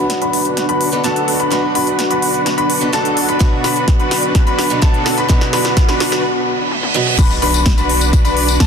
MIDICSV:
0, 0, Header, 1, 10, 480
1, 0, Start_track
1, 0, Key_signature, 2, "minor"
1, 0, Tempo, 472441
1, 1540, Time_signature, 4, 2, 24, 8
1, 8807, End_track
2, 0, Start_track
2, 0, Title_t, "Grand piano"
2, 0, Program_c, 0, 0
2, 219, Note_on_c, 0, 83, 83
2, 671, Note_off_c, 0, 83, 0
2, 700, Note_on_c, 0, 83, 99
2, 1031, Note_off_c, 0, 83, 0
2, 1058, Note_on_c, 0, 81, 100
2, 1390, Note_off_c, 0, 81, 0
2, 1419, Note_on_c, 0, 83, 91
2, 1511, Note_off_c, 0, 83, 0
2, 1538, Note_on_c, 0, 83, 100
2, 1671, Note_off_c, 0, 83, 0
2, 1779, Note_on_c, 0, 83, 107
2, 1991, Note_off_c, 0, 83, 0
2, 2139, Note_on_c, 0, 83, 87
2, 2591, Note_off_c, 0, 83, 0
2, 2619, Note_on_c, 0, 83, 103
2, 2951, Note_off_c, 0, 83, 0
2, 2978, Note_on_c, 0, 81, 102
2, 3310, Note_off_c, 0, 81, 0
2, 3338, Note_on_c, 0, 83, 89
2, 3430, Note_off_c, 0, 83, 0
2, 3459, Note_on_c, 0, 83, 96
2, 3592, Note_off_c, 0, 83, 0
2, 3699, Note_on_c, 0, 83, 101
2, 3911, Note_off_c, 0, 83, 0
2, 4059, Note_on_c, 0, 83, 87
2, 4511, Note_off_c, 0, 83, 0
2, 4538, Note_on_c, 0, 83, 101
2, 4870, Note_off_c, 0, 83, 0
2, 4898, Note_on_c, 0, 81, 102
2, 5230, Note_off_c, 0, 81, 0
2, 5259, Note_on_c, 0, 83, 95
2, 5351, Note_off_c, 0, 83, 0
2, 5379, Note_on_c, 0, 83, 99
2, 5512, Note_off_c, 0, 83, 0
2, 5620, Note_on_c, 0, 83, 102
2, 5831, Note_off_c, 0, 83, 0
2, 5979, Note_on_c, 0, 83, 83
2, 6340, Note_off_c, 0, 83, 0
2, 7299, Note_on_c, 0, 83, 98
2, 7432, Note_off_c, 0, 83, 0
2, 7540, Note_on_c, 0, 83, 105
2, 7751, Note_off_c, 0, 83, 0
2, 7899, Note_on_c, 0, 83, 88
2, 8351, Note_off_c, 0, 83, 0
2, 8378, Note_on_c, 0, 83, 108
2, 8710, Note_off_c, 0, 83, 0
2, 8739, Note_on_c, 0, 81, 104
2, 8807, Note_off_c, 0, 81, 0
2, 8807, End_track
3, 0, Start_track
3, 0, Title_t, "Analog synth pad"
3, 0, Program_c, 1, 89
3, 0, Note_on_c, 1, 62, 84
3, 0, Note_on_c, 1, 66, 78
3, 0, Note_on_c, 1, 71, 75
3, 0, Note_on_c, 1, 78, 90
3, 6299, Note_off_c, 1, 62, 0
3, 6299, Note_off_c, 1, 66, 0
3, 6299, Note_off_c, 1, 71, 0
3, 6300, Note_off_c, 1, 78, 0
3, 7298, Note_on_c, 1, 62, 81
3, 7299, Note_on_c, 1, 59, 85
3, 7299, Note_on_c, 1, 66, 79
3, 7300, Note_on_c, 1, 74, 94
3, 8807, Note_off_c, 1, 59, 0
3, 8807, Note_off_c, 1, 62, 0
3, 8807, Note_off_c, 1, 66, 0
3, 8807, Note_off_c, 1, 74, 0
3, 8807, End_track
4, 0, Start_track
4, 0, Title_t, "Supersaw synth"
4, 0, Program_c, 2, 81
4, 219, Note_on_c, 2, 62, 77
4, 219, Note_on_c, 2, 66, 70
4, 219, Note_on_c, 2, 71, 85
4, 671, Note_off_c, 2, 62, 0
4, 671, Note_off_c, 2, 66, 0
4, 671, Note_off_c, 2, 71, 0
4, 699, Note_on_c, 2, 62, 89
4, 699, Note_on_c, 2, 66, 80
4, 699, Note_on_c, 2, 71, 104
4, 1031, Note_off_c, 2, 62, 0
4, 1031, Note_off_c, 2, 66, 0
4, 1031, Note_off_c, 2, 71, 0
4, 1058, Note_on_c, 2, 62, 95
4, 1058, Note_on_c, 2, 66, 83
4, 1058, Note_on_c, 2, 69, 101
4, 1390, Note_off_c, 2, 62, 0
4, 1390, Note_off_c, 2, 66, 0
4, 1390, Note_off_c, 2, 69, 0
4, 1419, Note_on_c, 2, 62, 77
4, 1419, Note_on_c, 2, 66, 74
4, 1419, Note_on_c, 2, 71, 85
4, 1511, Note_off_c, 2, 62, 0
4, 1511, Note_off_c, 2, 66, 0
4, 1511, Note_off_c, 2, 71, 0
4, 1539, Note_on_c, 2, 62, 91
4, 1539, Note_on_c, 2, 71, 99
4, 1540, Note_on_c, 2, 66, 83
4, 1672, Note_off_c, 2, 62, 0
4, 1672, Note_off_c, 2, 66, 0
4, 1672, Note_off_c, 2, 71, 0
4, 1780, Note_on_c, 2, 62, 100
4, 1780, Note_on_c, 2, 66, 91
4, 1780, Note_on_c, 2, 71, 115
4, 1991, Note_off_c, 2, 62, 0
4, 1991, Note_off_c, 2, 66, 0
4, 1991, Note_off_c, 2, 71, 0
4, 2140, Note_on_c, 2, 66, 69
4, 2140, Note_on_c, 2, 71, 83
4, 2141, Note_on_c, 2, 62, 81
4, 2591, Note_off_c, 2, 71, 0
4, 2592, Note_off_c, 2, 62, 0
4, 2592, Note_off_c, 2, 66, 0
4, 2619, Note_on_c, 2, 62, 95
4, 2620, Note_on_c, 2, 66, 83
4, 2620, Note_on_c, 2, 71, 102
4, 2951, Note_off_c, 2, 62, 0
4, 2951, Note_off_c, 2, 66, 0
4, 2951, Note_off_c, 2, 71, 0
4, 2981, Note_on_c, 2, 62, 92
4, 2981, Note_on_c, 2, 66, 83
4, 2981, Note_on_c, 2, 69, 102
4, 3312, Note_off_c, 2, 62, 0
4, 3312, Note_off_c, 2, 66, 0
4, 3312, Note_off_c, 2, 69, 0
4, 3339, Note_on_c, 2, 62, 82
4, 3339, Note_on_c, 2, 66, 73
4, 3339, Note_on_c, 2, 71, 90
4, 3431, Note_off_c, 2, 62, 0
4, 3431, Note_off_c, 2, 66, 0
4, 3431, Note_off_c, 2, 71, 0
4, 3459, Note_on_c, 2, 62, 89
4, 3459, Note_on_c, 2, 66, 82
4, 3459, Note_on_c, 2, 71, 100
4, 3592, Note_off_c, 2, 62, 0
4, 3592, Note_off_c, 2, 66, 0
4, 3592, Note_off_c, 2, 71, 0
4, 3700, Note_on_c, 2, 62, 103
4, 3700, Note_on_c, 2, 66, 97
4, 3700, Note_on_c, 2, 71, 117
4, 3911, Note_off_c, 2, 62, 0
4, 3911, Note_off_c, 2, 66, 0
4, 3911, Note_off_c, 2, 71, 0
4, 4060, Note_on_c, 2, 62, 79
4, 4060, Note_on_c, 2, 66, 71
4, 4060, Note_on_c, 2, 71, 88
4, 4511, Note_off_c, 2, 62, 0
4, 4511, Note_off_c, 2, 66, 0
4, 4511, Note_off_c, 2, 71, 0
4, 4538, Note_on_c, 2, 62, 94
4, 4539, Note_on_c, 2, 66, 89
4, 4539, Note_on_c, 2, 71, 100
4, 4871, Note_off_c, 2, 62, 0
4, 4871, Note_off_c, 2, 66, 0
4, 4871, Note_off_c, 2, 71, 0
4, 4898, Note_on_c, 2, 66, 87
4, 4899, Note_on_c, 2, 62, 93
4, 4899, Note_on_c, 2, 69, 103
4, 5231, Note_off_c, 2, 62, 0
4, 5231, Note_off_c, 2, 66, 0
4, 5231, Note_off_c, 2, 69, 0
4, 5259, Note_on_c, 2, 62, 80
4, 5259, Note_on_c, 2, 66, 72
4, 5259, Note_on_c, 2, 71, 90
4, 5351, Note_off_c, 2, 62, 0
4, 5351, Note_off_c, 2, 66, 0
4, 5351, Note_off_c, 2, 71, 0
4, 5381, Note_on_c, 2, 66, 83
4, 5381, Note_on_c, 2, 71, 101
4, 5513, Note_off_c, 2, 66, 0
4, 5513, Note_off_c, 2, 71, 0
4, 5620, Note_on_c, 2, 62, 101
4, 5621, Note_on_c, 2, 66, 92
4, 5621, Note_on_c, 2, 71, 113
4, 5831, Note_off_c, 2, 62, 0
4, 5832, Note_off_c, 2, 66, 0
4, 5832, Note_off_c, 2, 71, 0
4, 5981, Note_on_c, 2, 62, 83
4, 5981, Note_on_c, 2, 66, 72
4, 5981, Note_on_c, 2, 71, 90
4, 6340, Note_off_c, 2, 66, 0
4, 6341, Note_off_c, 2, 62, 0
4, 6341, Note_off_c, 2, 71, 0
4, 7300, Note_on_c, 2, 62, 89
4, 7300, Note_on_c, 2, 66, 83
4, 7301, Note_on_c, 2, 71, 101
4, 7432, Note_off_c, 2, 62, 0
4, 7432, Note_off_c, 2, 66, 0
4, 7432, Note_off_c, 2, 71, 0
4, 7540, Note_on_c, 2, 62, 106
4, 7541, Note_on_c, 2, 66, 94
4, 7541, Note_on_c, 2, 71, 114
4, 7751, Note_off_c, 2, 62, 0
4, 7752, Note_off_c, 2, 66, 0
4, 7752, Note_off_c, 2, 71, 0
4, 7901, Note_on_c, 2, 62, 79
4, 7901, Note_on_c, 2, 66, 76
4, 7901, Note_on_c, 2, 71, 86
4, 8352, Note_off_c, 2, 62, 0
4, 8352, Note_off_c, 2, 66, 0
4, 8352, Note_off_c, 2, 71, 0
4, 8381, Note_on_c, 2, 66, 82
4, 8382, Note_on_c, 2, 62, 94
4, 8382, Note_on_c, 2, 71, 102
4, 8712, Note_off_c, 2, 62, 0
4, 8712, Note_off_c, 2, 66, 0
4, 8712, Note_off_c, 2, 71, 0
4, 8742, Note_on_c, 2, 62, 97
4, 8742, Note_on_c, 2, 69, 106
4, 8807, Note_off_c, 2, 62, 0
4, 8807, Note_off_c, 2, 69, 0
4, 8807, End_track
5, 0, Start_track
5, 0, Title_t, "Steel-string acoustic guitar"
5, 0, Program_c, 3, 25
5, 0, Note_on_c, 3, 47, 88
5, 0, Note_on_c, 3, 54, 75
5, 0, Note_on_c, 3, 59, 80
5, 0, Note_on_c, 3, 62, 78
5, 0, Note_on_c, 3, 66, 95
5, 905, Note_off_c, 3, 47, 0
5, 908, Note_off_c, 3, 54, 0
5, 911, Note_off_c, 3, 59, 0
5, 914, Note_off_c, 3, 62, 0
5, 917, Note_off_c, 3, 66, 0
5, 931, Note_on_c, 3, 47, 76
5, 939, Note_on_c, 3, 59, 73
5, 941, Note_on_c, 3, 54, 58
5, 945, Note_on_c, 3, 62, 62
5, 945, Note_on_c, 3, 69, 82
5, 1028, Note_off_c, 3, 47, 0
5, 1029, Note_off_c, 3, 54, 0
5, 1031, Note_off_c, 3, 59, 0
5, 1032, Note_off_c, 3, 62, 0
5, 1034, Note_off_c, 3, 69, 0
5, 1051, Note_on_c, 3, 47, 84
5, 1058, Note_on_c, 3, 59, 76
5, 1060, Note_on_c, 3, 54, 67
5, 1066, Note_on_c, 3, 69, 92
5, 1067, Note_on_c, 3, 62, 67
5, 1508, Note_off_c, 3, 47, 0
5, 1510, Note_off_c, 3, 54, 0
5, 1511, Note_off_c, 3, 59, 0
5, 1513, Note_off_c, 3, 62, 0
5, 1514, Note_off_c, 3, 69, 0
5, 1528, Note_on_c, 3, 47, 84
5, 1535, Note_on_c, 3, 54, 80
5, 1541, Note_on_c, 3, 59, 78
5, 1547, Note_on_c, 3, 62, 82
5, 1553, Note_on_c, 3, 66, 93
5, 2825, Note_off_c, 3, 47, 0
5, 2829, Note_off_c, 3, 54, 0
5, 2832, Note_off_c, 3, 59, 0
5, 2835, Note_off_c, 3, 62, 0
5, 2838, Note_off_c, 3, 66, 0
5, 2850, Note_on_c, 3, 47, 77
5, 2857, Note_on_c, 3, 59, 68
5, 2860, Note_on_c, 3, 54, 62
5, 2864, Note_on_c, 3, 62, 66
5, 2866, Note_on_c, 3, 69, 88
5, 2948, Note_off_c, 3, 47, 0
5, 2949, Note_off_c, 3, 54, 0
5, 2951, Note_off_c, 3, 59, 0
5, 2952, Note_off_c, 3, 62, 0
5, 2954, Note_off_c, 3, 69, 0
5, 2971, Note_on_c, 3, 47, 87
5, 2977, Note_on_c, 3, 59, 69
5, 2979, Note_on_c, 3, 54, 68
5, 2986, Note_on_c, 3, 62, 71
5, 2986, Note_on_c, 3, 69, 90
5, 3428, Note_off_c, 3, 47, 0
5, 3429, Note_off_c, 3, 54, 0
5, 3431, Note_off_c, 3, 59, 0
5, 3433, Note_off_c, 3, 62, 0
5, 3434, Note_off_c, 3, 69, 0
5, 3446, Note_on_c, 3, 47, 87
5, 3452, Note_on_c, 3, 54, 82
5, 3458, Note_on_c, 3, 59, 84
5, 3464, Note_on_c, 3, 62, 84
5, 3470, Note_on_c, 3, 66, 100
5, 4745, Note_off_c, 3, 47, 0
5, 4747, Note_off_c, 3, 54, 0
5, 4750, Note_off_c, 3, 59, 0
5, 4753, Note_off_c, 3, 62, 0
5, 4757, Note_off_c, 3, 66, 0
5, 4772, Note_on_c, 3, 47, 83
5, 4777, Note_on_c, 3, 59, 76
5, 4782, Note_on_c, 3, 54, 61
5, 4785, Note_on_c, 3, 69, 86
5, 4786, Note_on_c, 3, 62, 61
5, 4868, Note_off_c, 3, 47, 0
5, 4869, Note_off_c, 3, 54, 0
5, 4871, Note_off_c, 3, 59, 0
5, 4872, Note_off_c, 3, 62, 0
5, 4874, Note_off_c, 3, 69, 0
5, 4892, Note_on_c, 3, 47, 87
5, 4897, Note_on_c, 3, 59, 80
5, 4900, Note_on_c, 3, 54, 68
5, 4905, Note_on_c, 3, 69, 98
5, 4906, Note_on_c, 3, 62, 69
5, 5348, Note_off_c, 3, 47, 0
5, 5350, Note_off_c, 3, 54, 0
5, 5351, Note_off_c, 3, 59, 0
5, 5353, Note_off_c, 3, 62, 0
5, 5354, Note_off_c, 3, 69, 0
5, 5368, Note_on_c, 3, 47, 90
5, 5375, Note_on_c, 3, 54, 82
5, 5381, Note_on_c, 3, 59, 83
5, 5387, Note_on_c, 3, 62, 82
5, 5393, Note_on_c, 3, 66, 98
5, 6666, Note_off_c, 3, 47, 0
5, 6669, Note_off_c, 3, 54, 0
5, 6672, Note_off_c, 3, 59, 0
5, 6675, Note_off_c, 3, 62, 0
5, 6678, Note_off_c, 3, 66, 0
5, 7054, Note_on_c, 3, 47, 107
5, 7061, Note_on_c, 3, 54, 76
5, 7061, Note_on_c, 3, 59, 89
5, 7067, Note_on_c, 3, 62, 75
5, 7067, Note_on_c, 3, 66, 110
5, 7269, Note_off_c, 3, 47, 0
5, 7271, Note_off_c, 3, 54, 0
5, 7272, Note_off_c, 3, 59, 0
5, 7274, Note_off_c, 3, 62, 0
5, 7275, Note_off_c, 3, 66, 0
5, 8807, End_track
6, 0, Start_track
6, 0, Title_t, "Sub bass"
6, 0, Program_c, 4, 38
6, 0, Note_on_c, 4, 35, 101
6, 195, Note_off_c, 4, 35, 0
6, 219, Note_on_c, 4, 35, 96
6, 676, Note_off_c, 4, 35, 0
6, 701, Note_on_c, 4, 35, 94
6, 1037, Note_off_c, 4, 35, 0
6, 1061, Note_on_c, 4, 35, 91
6, 1396, Note_off_c, 4, 35, 0
6, 1421, Note_on_c, 4, 35, 100
6, 1517, Note_off_c, 4, 35, 0
6, 1541, Note_on_c, 4, 35, 94
6, 1756, Note_off_c, 4, 35, 0
6, 1780, Note_on_c, 4, 35, 97
6, 2116, Note_off_c, 4, 35, 0
6, 2139, Note_on_c, 4, 35, 95
6, 2596, Note_off_c, 4, 35, 0
6, 2620, Note_on_c, 4, 35, 95
6, 2956, Note_off_c, 4, 35, 0
6, 2979, Note_on_c, 4, 35, 99
6, 3316, Note_off_c, 4, 35, 0
6, 3340, Note_on_c, 4, 35, 106
6, 3436, Note_off_c, 4, 35, 0
6, 3700, Note_on_c, 4, 35, 96
6, 4036, Note_off_c, 4, 35, 0
6, 4061, Note_on_c, 4, 35, 95
6, 4517, Note_off_c, 4, 35, 0
6, 5260, Note_on_c, 4, 35, 103
6, 5356, Note_off_c, 4, 35, 0
6, 7301, Note_on_c, 4, 35, 97
6, 7516, Note_off_c, 4, 35, 0
6, 7540, Note_on_c, 4, 35, 98
6, 7876, Note_off_c, 4, 35, 0
6, 7901, Note_on_c, 4, 35, 97
6, 8356, Note_off_c, 4, 35, 0
6, 8380, Note_on_c, 4, 35, 92
6, 8716, Note_off_c, 4, 35, 0
6, 8741, Note_on_c, 4, 35, 93
6, 8807, Note_off_c, 4, 35, 0
6, 8807, End_track
7, 0, Start_track
7, 0, Title_t, "Impact"
7, 0, Program_c, 5, 103
7, 7300, Note_on_c, 5, 60, 78
7, 8807, Note_off_c, 5, 60, 0
7, 8807, End_track
8, 0, Start_track
8, 0, Title_t, "Reverse cymbal"
8, 0, Program_c, 6, 119
8, 6340, Note_on_c, 6, 60, 82
8, 7300, Note_off_c, 6, 60, 0
8, 8807, End_track
9, 0, Start_track
9, 0, Title_t, "Riser"
9, 0, Program_c, 7, 103
9, 0, Note_on_c, 7, 60, 81
9, 6340, Note_off_c, 7, 60, 0
9, 8807, End_track
10, 0, Start_track
10, 0, Title_t, "Drums"
10, 99, Note_on_c, 9, 38, 51
10, 99, Note_on_c, 9, 42, 84
10, 201, Note_off_c, 9, 38, 0
10, 201, Note_off_c, 9, 42, 0
10, 220, Note_on_c, 9, 42, 38
10, 321, Note_off_c, 9, 42, 0
10, 339, Note_on_c, 9, 46, 101
10, 441, Note_off_c, 9, 46, 0
10, 460, Note_on_c, 9, 42, 52
10, 562, Note_off_c, 9, 42, 0
10, 579, Note_on_c, 9, 38, 53
10, 579, Note_on_c, 9, 42, 85
10, 681, Note_off_c, 9, 38, 0
10, 681, Note_off_c, 9, 42, 0
10, 700, Note_on_c, 9, 42, 38
10, 802, Note_off_c, 9, 42, 0
10, 820, Note_on_c, 9, 46, 106
10, 921, Note_off_c, 9, 46, 0
10, 940, Note_on_c, 9, 42, 52
10, 1042, Note_off_c, 9, 42, 0
10, 1060, Note_on_c, 9, 38, 52
10, 1060, Note_on_c, 9, 42, 78
10, 1162, Note_off_c, 9, 38, 0
10, 1162, Note_off_c, 9, 42, 0
10, 1181, Note_on_c, 9, 42, 39
10, 1282, Note_off_c, 9, 42, 0
10, 1300, Note_on_c, 9, 46, 100
10, 1402, Note_off_c, 9, 46, 0
10, 1421, Note_on_c, 9, 42, 50
10, 1522, Note_off_c, 9, 42, 0
10, 1541, Note_on_c, 9, 38, 60
10, 1541, Note_on_c, 9, 42, 83
10, 1642, Note_off_c, 9, 38, 0
10, 1642, Note_off_c, 9, 42, 0
10, 1781, Note_on_c, 9, 46, 108
10, 1882, Note_off_c, 9, 46, 0
10, 1900, Note_on_c, 9, 42, 56
10, 2002, Note_off_c, 9, 42, 0
10, 2019, Note_on_c, 9, 38, 63
10, 2019, Note_on_c, 9, 42, 81
10, 2121, Note_off_c, 9, 38, 0
10, 2121, Note_off_c, 9, 42, 0
10, 2140, Note_on_c, 9, 42, 39
10, 2241, Note_off_c, 9, 42, 0
10, 2260, Note_on_c, 9, 46, 110
10, 2361, Note_off_c, 9, 46, 0
10, 2380, Note_on_c, 9, 42, 51
10, 2481, Note_off_c, 9, 42, 0
10, 2500, Note_on_c, 9, 38, 69
10, 2500, Note_on_c, 9, 42, 81
10, 2601, Note_off_c, 9, 38, 0
10, 2601, Note_off_c, 9, 42, 0
10, 2620, Note_on_c, 9, 42, 38
10, 2721, Note_off_c, 9, 42, 0
10, 2740, Note_on_c, 9, 46, 111
10, 2841, Note_off_c, 9, 46, 0
10, 2860, Note_on_c, 9, 42, 52
10, 2961, Note_off_c, 9, 42, 0
10, 2980, Note_on_c, 9, 38, 67
10, 2980, Note_on_c, 9, 42, 77
10, 3082, Note_off_c, 9, 38, 0
10, 3082, Note_off_c, 9, 42, 0
10, 3100, Note_on_c, 9, 42, 40
10, 3202, Note_off_c, 9, 42, 0
10, 3219, Note_on_c, 9, 46, 107
10, 3321, Note_off_c, 9, 46, 0
10, 3340, Note_on_c, 9, 42, 50
10, 3442, Note_off_c, 9, 42, 0
10, 3459, Note_on_c, 9, 38, 74
10, 3459, Note_on_c, 9, 42, 79
10, 3460, Note_on_c, 9, 36, 127
10, 3561, Note_off_c, 9, 38, 0
10, 3561, Note_off_c, 9, 42, 0
10, 3562, Note_off_c, 9, 36, 0
10, 3700, Note_on_c, 9, 38, 77
10, 3700, Note_on_c, 9, 46, 117
10, 3801, Note_off_c, 9, 38, 0
10, 3801, Note_off_c, 9, 46, 0
10, 3820, Note_on_c, 9, 42, 50
10, 3922, Note_off_c, 9, 42, 0
10, 3939, Note_on_c, 9, 38, 82
10, 3939, Note_on_c, 9, 42, 81
10, 3940, Note_on_c, 9, 36, 119
10, 4041, Note_off_c, 9, 38, 0
10, 4041, Note_off_c, 9, 42, 0
10, 4042, Note_off_c, 9, 36, 0
10, 4059, Note_on_c, 9, 42, 36
10, 4161, Note_off_c, 9, 42, 0
10, 4178, Note_on_c, 9, 38, 78
10, 4178, Note_on_c, 9, 46, 115
10, 4279, Note_off_c, 9, 38, 0
10, 4279, Note_off_c, 9, 46, 0
10, 4298, Note_on_c, 9, 42, 51
10, 4400, Note_off_c, 9, 42, 0
10, 4419, Note_on_c, 9, 38, 85
10, 4419, Note_on_c, 9, 42, 77
10, 4420, Note_on_c, 9, 36, 118
10, 4520, Note_off_c, 9, 38, 0
10, 4520, Note_off_c, 9, 42, 0
10, 4522, Note_off_c, 9, 36, 0
10, 4539, Note_on_c, 9, 42, 36
10, 4641, Note_off_c, 9, 42, 0
10, 4659, Note_on_c, 9, 38, 88
10, 4659, Note_on_c, 9, 46, 112
10, 4761, Note_off_c, 9, 38, 0
10, 4761, Note_off_c, 9, 46, 0
10, 4779, Note_on_c, 9, 42, 49
10, 4880, Note_off_c, 9, 42, 0
10, 4899, Note_on_c, 9, 38, 83
10, 4899, Note_on_c, 9, 42, 74
10, 4900, Note_on_c, 9, 36, 127
10, 5001, Note_off_c, 9, 38, 0
10, 5001, Note_off_c, 9, 42, 0
10, 5002, Note_off_c, 9, 36, 0
10, 5019, Note_on_c, 9, 42, 38
10, 5121, Note_off_c, 9, 42, 0
10, 5139, Note_on_c, 9, 38, 89
10, 5139, Note_on_c, 9, 46, 105
10, 5241, Note_off_c, 9, 38, 0
10, 5241, Note_off_c, 9, 46, 0
10, 5259, Note_on_c, 9, 42, 49
10, 5361, Note_off_c, 9, 42, 0
10, 5380, Note_on_c, 9, 36, 127
10, 5380, Note_on_c, 9, 38, 93
10, 5380, Note_on_c, 9, 42, 78
10, 5481, Note_off_c, 9, 38, 0
10, 5481, Note_off_c, 9, 42, 0
10, 5482, Note_off_c, 9, 36, 0
10, 5500, Note_on_c, 9, 38, 78
10, 5601, Note_off_c, 9, 38, 0
10, 5619, Note_on_c, 9, 38, 101
10, 5619, Note_on_c, 9, 46, 110
10, 5720, Note_off_c, 9, 38, 0
10, 5720, Note_off_c, 9, 46, 0
10, 5739, Note_on_c, 9, 38, 85
10, 5739, Note_on_c, 9, 42, 51
10, 5841, Note_off_c, 9, 38, 0
10, 5841, Note_off_c, 9, 42, 0
10, 5860, Note_on_c, 9, 36, 118
10, 5860, Note_on_c, 9, 38, 99
10, 5860, Note_on_c, 9, 42, 77
10, 5962, Note_off_c, 9, 36, 0
10, 5962, Note_off_c, 9, 38, 0
10, 5962, Note_off_c, 9, 42, 0
10, 5980, Note_on_c, 9, 38, 85
10, 5980, Note_on_c, 9, 42, 36
10, 6081, Note_off_c, 9, 38, 0
10, 6081, Note_off_c, 9, 42, 0
10, 6100, Note_on_c, 9, 38, 100
10, 6100, Note_on_c, 9, 46, 109
10, 6201, Note_off_c, 9, 38, 0
10, 6201, Note_off_c, 9, 46, 0
10, 6220, Note_on_c, 9, 38, 85
10, 6220, Note_on_c, 9, 42, 51
10, 6321, Note_off_c, 9, 38, 0
10, 6321, Note_off_c, 9, 42, 0
10, 6821, Note_on_c, 9, 48, 59
10, 6922, Note_off_c, 9, 48, 0
10, 6941, Note_on_c, 9, 48, 67
10, 7043, Note_off_c, 9, 48, 0
10, 7062, Note_on_c, 9, 47, 86
10, 7163, Note_off_c, 9, 47, 0
10, 7180, Note_on_c, 9, 45, 79
10, 7282, Note_off_c, 9, 45, 0
10, 7301, Note_on_c, 9, 36, 122
10, 7301, Note_on_c, 9, 42, 87
10, 7301, Note_on_c, 9, 49, 111
10, 7302, Note_on_c, 9, 54, 59
10, 7403, Note_off_c, 9, 36, 0
10, 7403, Note_off_c, 9, 42, 0
10, 7403, Note_off_c, 9, 49, 0
10, 7403, Note_off_c, 9, 54, 0
10, 7422, Note_on_c, 9, 54, 33
10, 7523, Note_off_c, 9, 54, 0
10, 7541, Note_on_c, 9, 46, 110
10, 7642, Note_off_c, 9, 46, 0
10, 7662, Note_on_c, 9, 42, 58
10, 7662, Note_on_c, 9, 54, 71
10, 7763, Note_off_c, 9, 42, 0
10, 7764, Note_off_c, 9, 54, 0
10, 7780, Note_on_c, 9, 38, 127
10, 7781, Note_on_c, 9, 36, 116
10, 7781, Note_on_c, 9, 42, 86
10, 7782, Note_on_c, 9, 54, 59
10, 7881, Note_off_c, 9, 38, 0
10, 7883, Note_off_c, 9, 36, 0
10, 7883, Note_off_c, 9, 42, 0
10, 7883, Note_off_c, 9, 54, 0
10, 7902, Note_on_c, 9, 42, 39
10, 7902, Note_on_c, 9, 54, 35
10, 8003, Note_off_c, 9, 42, 0
10, 8004, Note_off_c, 9, 54, 0
10, 8021, Note_on_c, 9, 46, 109
10, 8123, Note_off_c, 9, 46, 0
10, 8140, Note_on_c, 9, 42, 54
10, 8141, Note_on_c, 9, 54, 66
10, 8242, Note_off_c, 9, 42, 0
10, 8243, Note_off_c, 9, 54, 0
10, 8261, Note_on_c, 9, 36, 119
10, 8261, Note_on_c, 9, 42, 85
10, 8261, Note_on_c, 9, 54, 58
10, 8362, Note_off_c, 9, 36, 0
10, 8362, Note_off_c, 9, 42, 0
10, 8363, Note_off_c, 9, 54, 0
10, 8380, Note_on_c, 9, 42, 41
10, 8381, Note_on_c, 9, 54, 34
10, 8482, Note_off_c, 9, 42, 0
10, 8482, Note_off_c, 9, 54, 0
10, 8500, Note_on_c, 9, 46, 104
10, 8602, Note_off_c, 9, 46, 0
10, 8620, Note_on_c, 9, 42, 55
10, 8621, Note_on_c, 9, 54, 65
10, 8722, Note_off_c, 9, 42, 0
10, 8722, Note_off_c, 9, 54, 0
10, 8739, Note_on_c, 9, 38, 125
10, 8740, Note_on_c, 9, 42, 84
10, 8741, Note_on_c, 9, 36, 121
10, 8807, Note_off_c, 9, 36, 0
10, 8807, Note_off_c, 9, 38, 0
10, 8807, Note_off_c, 9, 42, 0
10, 8807, End_track
0, 0, End_of_file